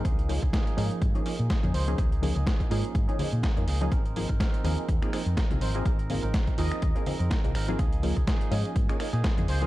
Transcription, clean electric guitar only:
X:1
M:4/4
L:1/16
Q:"Swing 16ths" 1/4=124
K:Dblyd
V:1 name="Clean electric guitar"
[F,B,EA]3 [B,EA] [F,B,EA]2 [F,B,EA]3 [B,EA]3 [F,B,EA] [B,EA] [F,B,EA] [B,EA] | [F,B,EA] [B,EA]2 [B,EA] [F,B,A]2 [F,B,EA]3 [B,EA]3 [F,B,EA] [B,EA] [F,B,EA] [B,EA] | [F,CEB] [CEB]2 [CEB] [F,CEB]2 [F,CEB]3 [CEB]3 [F,CEB] [CEB] [F,CEB] [CEB] | [CE] [CEB]2 [CEB] [F,C]2 [F,CEB]3 [CEB]2 [CEB] [F,CEB] [CEB] [F,CEB] [CEB] |
[F,B,EA]3 [B,EA] [F,B,EA]2 [F,B,EA]3 [B,EA]2 [B,EA] [F,B,] [B,EA] [F,B,EA] [B,EA] |]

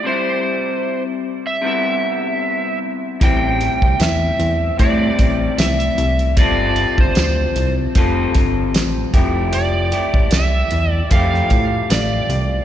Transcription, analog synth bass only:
X:1
M:4/4
L:1/16
Q:"Swing 16ths" 1/4=76
K:C
V:1 name="Analog synth bass" clef=bass
z16 | A,,,3 C,, E,,2 E,,2 A,,2 A,,,2 C,,2 C,,2 | G,,,3 G,,, D,,2 C,,2 F,,,2 G,,,2 A,,,2 F,,,2- | F,,,3 A,,, C,,2 E,,2 F,,2 A,,2 A,,,2 C,,2 |]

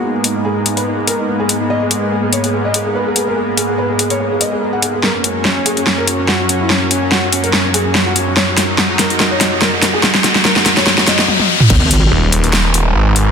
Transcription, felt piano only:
X:1
M:4/4
L:1/16
Q:"Swing 16ths" 1/4=144
K:G#m
V:1 name="Felt piano"
D z D D G D D B D D A D D G D D | d G G z G G c G G d G G B G G A | G z G G B G G c G G d G G f G G | A C C z C C G C C A C C F C C E |
C z C C F C C A C C G C C F C C | c F F z F F A F F c F F A F F G | F z F F A F F c F F d F z4 | z16 |]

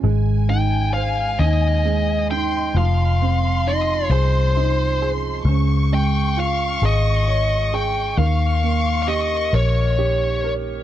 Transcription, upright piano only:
X:1
M:6/8
L:1/8
Q:3/8=44
K:Ab
V:1 name="Upright piano"
A, E c E A, E | F, C E A E A | D, A, F A d A | E, B, G B G B |]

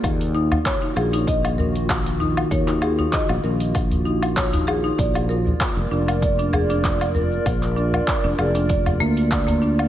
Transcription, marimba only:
X:1
M:4/4
L:1/16
Q:"Swing 16ths" 1/4=97
K:Ebm
V:1 name="Marimba"
z2 E z d E A E e z B4 E z | d E A E e z B4 E z d E A E | =d z B4 =D z d D A D d z B2- | B2 =D z =d D A D d z B, z d B, D z |]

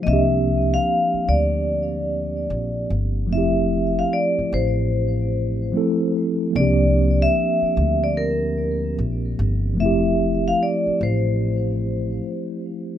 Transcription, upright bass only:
X:1
M:4/4
L:1/8
Q:"Swing 16ths" 1/4=74
K:F
V:1 name="Upright bass" clef=bass
C,,2 z D,,3 B,,, G,,, | F,,,2 z A,,,3 z2 | C,,2 z D,,3 B,,, G,,, | F,,,2 z A,,,3 z2 |]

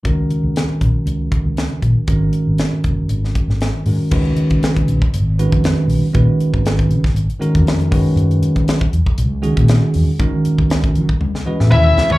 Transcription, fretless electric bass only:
X:1
M:4/4
L:1/16
Q:"Swing 16ths" 1/4=118
K:Gb
V:1 name="Fretless electric bass" clef=bass
D,,2 z D,, z2 C,, z D,,2 z D,,2 z B,,, z | A,,,2 z A,,, z2 G,,, z A,,,2 z A,,,2 z A,, z | D,,2 z D,3 C,, z A,,,3 F,,2 z C,, z | B,, z2 A,,,3 D, z A,,, z2 F,,3 G,, z |
G,,2 z G,3 _F,, z D,,3 B,,2 z F,, z | E, z2 D,,3 G, z D,, z2 B,, E,,2 D,,2 |]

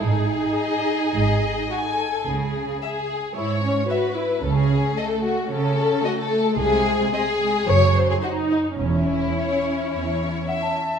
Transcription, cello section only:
X:1
M:4/4
L:1/8
Q:1/4=109
K:C#m
V:1 name="Cello section" clef=bass
G,,2 z2 G,,2 z2 | C,2 z2 G,,2 z2 | C,2 z2 C,2 z2 | ^B,,2 z2 F,,2 z2 |
E,,2 z2 E,,2 z2 |]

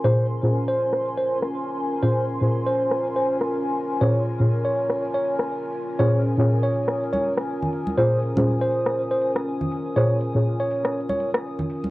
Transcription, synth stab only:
X:1
M:4/4
L:1/16
Q:"Swing 16ths" 1/4=121
K:Bbm
V:1 name="Synth stab"
[B,,DFAc]3 [B,,DFAc]12- [B,,DFAc] | [B,,DFAc]3 [B,,DFAc]12- [B,,DFAc] | [B,,DFAc]3 [B,,DFAd]12- [B,,DFAd] | [B,,DFAc]3 [B,,DFAd]12- [B,,DFAd] |
[B,,DFAc]3 [B,,DFAc]12- [B,,DFAc] | [B,,DFAc]3 [B,,DFAd]12- [B,,DFAd] |]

